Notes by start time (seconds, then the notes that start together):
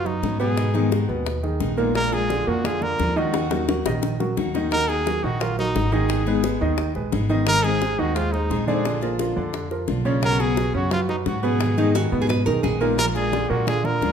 Already playing: F#2
0.05 F#3 D#4 F#4 B4, high bongo
0.23 G#2 F#3 B3 C#4 F#4, high bongo, low bongo
0.39 B2 F#3 B3 C#4 F#4 G#4 B4
0.57 D#3 G#3 B3 D#4 A#4, high bongo
0.74 D#3 G#3 B3 D#4 G#4 A#4, high bongo
0.91 D#3 G#3 B3 D#4 G#4 A#4, high bongo
1.09 D#2 B2 B3
1.26 muted steel-string acoustic guitar stroke, high bongo
1.43 D#3 D#4 G#4, high bongo
1.60 A#1 G#3 B3 D#4 A#4, high bongo, low bongo
1.77 A#2 G#3 A#3 B3 D#4 A#4
1.94 A#2 F3 G#3 A#3 D4 F4 A#4, high bongo
2.12 G#3 D4 F4 G#4, high bongo
2.30 D3 F3 G#3 D4 F4, high bongo
2.47 F2 A#2 A#3 F#4 A#4
2.64 D3 D4 F4 G#4, muted steel-string acoustic guitar stroke, high bongo
2.81 D3 D4 F4 A#4, high bongo
2.98 D#2 F3 G#3 D4 F4, high bongo, low bongo
3.16 D#3 G#3 D4 D#4 F4 F#4 D#5
3.33 D#3 A#3 D#4 F#4, high bongo
3.51 F#3 A#3 D#4 F#4 A#4, high bongo
3.68 D#3 F#3 A#3 D#4 F#4 A#4, low bongo
3.86 A#1 D#3 D#4 D#5, high bongo
4.02 muted steel-string acoustic guitar stroke, low bongo
4.20 F#3 F#4 A#4, low bongo
4.37 D#2 D#3 A#3 D#4 F#4, low bongo
4.54 D#3 A#3 D#4 F#4 D#5, low bongo
4.71 D#3 A#3 D#4 F#4 A#4 D#5, high bongo
4.88 A#3 D#4 F#4 G#4, high bongo
5.06 D#3 F#3 A#3 D#4 F#4 A#4, high bongo
5.23 A#1 D#3 D#4 F#4 D#5
5.40 F#3 F4 F#4 A#4, muted steel-string acoustic guitar stroke, high bongo
5.58 F#3 D#4 F#4 A#4, high bongo
5.75 G#1 D#3 A#3 D#4 F#4, high bongo, low bongo
5.92 D#3 A#3 D#4 F#4 G#4 D#5
6.09 D#3 G#3 B3 D#4 G#4, high bongo
6.26 G#3 B3 D#4 G#4 B4, high bongo
6.43 G#3 B3 D#4 G#4 B4, high bongo
6.61 D#2 D#3 D#4 D#5
6.78 muted steel-string acoustic guitar stroke, high bongo
6.95 A#1 G#3 G#4 B4, high bongo
7.12 G#1 G#3 B3 D#4 G#4, high bongo, low bongo
7.29 D#3 G#3 B3 D#4 G#4 D#5
7.46 D#3 G#3 C4 D#4 G#4 A#4 D#5, high bongo
7.64 G#3 C4 D#4 G#4, high bongo
7.81 G#3 C4 D#4 G#4 C5, high bongo
7.98 D#2 D#3 D#4 F#4 D#5
8.15 G#3 F4 G#4 C5, muted steel-string acoustic guitar stroke, high bongo
8.32 G#3 D#4 G#4 C5, high bongo
8.50 A#1 G#3 C4 D#4 G#4, high bongo, low bongo
8.67 D3 G#3 C4 D4 D#4 G#4 D5
8.85 D3 A#3 D4 F4, high bongo
9.01 F3 A#3 D4 F4 A#4, high bongo
9.19 D3 F3 A#3 D4 F4 A#4, high bongo
9.36 F2 D3 D4 D5
9.53 muted steel-string acoustic guitar stroke, high bongo
9.71 F3 F4 A#4, high bongo
9.87 B1 D3 A#3 D4 F4, high bongo, low bongo
10.05 C#3 A#3 C#4 D4 F4 C#5
10.22 B2 C#3 F#3 B3 C#4 F#4 A#4 C#5, high bongo
10.39 F#3 B3 C#4 F#4 G#4, high bongo
10.56 F#3 B3 C#4 F#4 B4, high bongo
10.74 F#2 C#3 C#4 F#4 C#5
10.91 F#3 F4 F#4 B4, muted steel-string acoustic guitar stroke, high bongo
11.09 F#3 D#4 F#4 B4, high bongo
11.26 G#2 F#3 B3 C#4 F#4, high bongo, low bongo
11.43 B2 F#3 B3 C#4 F#4 G#4 B4
11.59 D#3 G#3 B3 D#4 A#4, high bongo
11.77 D#3 G#3 B3 D#4 G#4 A#4, high bongo
11.94 D#3 G#3 B3 D#4 F#4 G#4 A#4, high bongo
12.12 G#2 B2 B3
12.22 G#4
12.29 B4, muted steel-string acoustic guitar stroke, high bongo
12.46 B1 D#3 D#4 G#4 A#4, high bongo
12.63 A#1 G#3 B3 D#4 G#4 A#4, high bongo, low bongo
12.80 A#2 G#3 A#3 B3 D#4 A#4
12.98 A#2 F3 G#3 A#3 D4 F4 A#4, high bongo
13.15 G#3 D4 F4 G#4, high bongo
13.32 D3 F3 G#3 D4 F4, high bongo
13.49 A#2 A#3 F#4 A#4
13.67 D3 D4 F4 G#4, muted steel-string acoustic guitar stroke, high bongo
13.84 D3 D4 F4 A#4, high bongo
14.01 D#2 F3 G#3 D4 F4, high bongo, low bongo